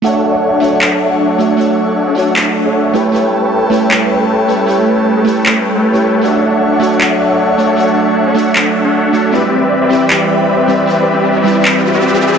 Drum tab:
CP |----x---|----x---|----x---|----x---|

CP |----x---|----x---|----x---|----x---|